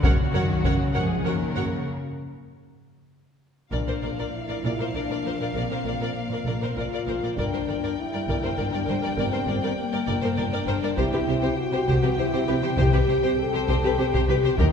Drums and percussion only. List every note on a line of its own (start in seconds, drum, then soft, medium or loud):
0.03 taiko medium
0.64 taiko medium
3.72 taiko soft
7.37 taiko medium
8.28 taiko soft
10.98 taiko medium
11.88 taiko soft
12.78 taiko medium
13.68 taiko medium
14.13 taiko medium
14.58 taiko medium